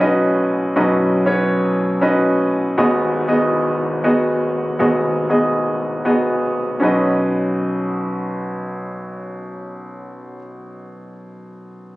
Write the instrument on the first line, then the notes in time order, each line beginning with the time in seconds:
grand piano
Already playing: B1 F#2
0.00 C#4 F#4 B4 D#5
0.76 B1 F#2 C#4 F#4 B4 D#5
1.26 C#4 F#4 B4 C#5
2.01 C#4 F#4 B4 D#5
2.78 G#1 D#2 B3 F#4 G#4 D#5
3.28 B3 F#4 G#4 D#5
4.04 B3 F#4 G#4 D#5
4.79 G#1 D#2 B3 F#4 G#4 D#5
5.29 B3 F#4 G#4 D#5
6.05 B3 F#4 G#4 D#5
6.80 B1 C#4 F#4 B4 D#5